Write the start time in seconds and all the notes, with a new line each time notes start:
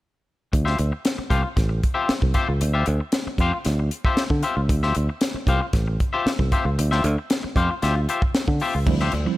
0.53 D2, muted clean electric guitar stroke, kick, closed hi-hat
0.65 F4 G4 C5 E5, snare
0.79 D2, muted clean electric guitar stroke, closed hi-hat
0.92 muted clean electric guitar stroke
1.05 snare, closed hi-hat
1.18 muted clean electric guitar stroke, muted fingered electric bass stroke
1.30 C2 F4 G4 C5 F5, kick, closed hi-hat
1.43 muted clean electric guitar stroke
1.56 A1, muted clean electric guitar stroke, kick, snare, closed hi-hat
1.69 muted clean electric guitar stroke
1.83 kick, closed hi-hat
1.94 F4 G4 C5 E5
2.09 muted fingered electric bass stroke, snare, closed hi-hat
2.21 C2, muted clean electric guitar stroke, kick
2.34 F4 G4 C5 E5, kick, closed hi-hat
2.48 C#2, muted clean electric guitar stroke
2.61 D2, muted clean electric guitar stroke, closed hi-hat
2.74 F4 G4 C5 E5
2.86 D2, muted clean electric guitar stroke, closed hi-hat
3.00 muted clean electric guitar stroke
3.12 snare, closed hi-hat
3.27 muted fingered electric bass stroke, muted clean electric guitar stroke
3.38 F2 F4 G4 C5 F5, kick, closed hi-hat
3.53 muted clean electric guitar stroke
3.65 D2, muted clean electric guitar stroke, snare, closed hi-hat
3.79 muted clean electric guitar stroke
3.91 closed hi-hat
4.05 F4 G4 C5 E5, kick
4.17 snare, closed hi-hat
4.30 D3, muted clean electric guitar stroke, kick
4.43 F4 G4 C5 E5, closed hi-hat
4.57 C#2, muted clean electric guitar stroke
4.69 D2, muted clean electric guitar stroke, kick, closed hi-hat
4.83 F4 G4 C5 E5, snare
4.95 D2, muted clean electric guitar stroke, closed hi-hat
5.09 muted clean electric guitar stroke
5.21 snare, closed hi-hat
5.34 muted fingered electric bass stroke, muted clean electric guitar stroke
5.47 C2 F4 G4 C5 F5, kick, closed hi-hat
5.61 muted clean electric guitar stroke
5.73 A1, muted clean electric guitar stroke, kick, snare, closed hi-hat
5.88 muted clean electric guitar stroke
6.00 kick, closed hi-hat
6.13 F4 G4 C5 E5
6.26 muted fingered electric bass stroke, snare, closed hi-hat
6.39 C2, muted clean electric guitar stroke, kick
6.52 F4 G4 C5 E5, kick, closed hi-hat
6.65 C#2, muted clean electric guitar stroke
6.78 D2, muted clean electric guitar stroke, closed hi-hat
6.91 F4 G4 C5 E5, snare
7.04 D2, muted clean electric guitar stroke, closed hi-hat
7.18 muted clean electric guitar stroke
7.30 snare, closed hi-hat
7.43 muted clean electric guitar stroke, muted fingered electric bass stroke
7.56 F2 F4 G4 C5 F5, kick, closed hi-hat
7.71 muted clean electric guitar stroke
7.82 D2 F4 G4 C5 E5, snare, closed hi-hat
7.95 muted clean electric guitar stroke
8.09 F4 G4 C5 E5, closed hi-hat
8.22 muted clean electric guitar stroke, kick
8.35 snare, closed hi-hat
8.48 D3, muted clean electric guitar stroke, kick
8.60 F4 G4 C5 E5, open hi-hat
8.75 C#2, muted clean electric guitar stroke
8.86 D2 F3 G3 C4 E4, muted clean electric guitar stroke, kick, crash, muted conga, low conga
9.00 F4 G4 C5 E5, snare, muted conga
9.12 D2 D3, muted clean electric guitar stroke, closed hi-hat
9.25 F3 G3 C4 E4, muted clean electric guitar stroke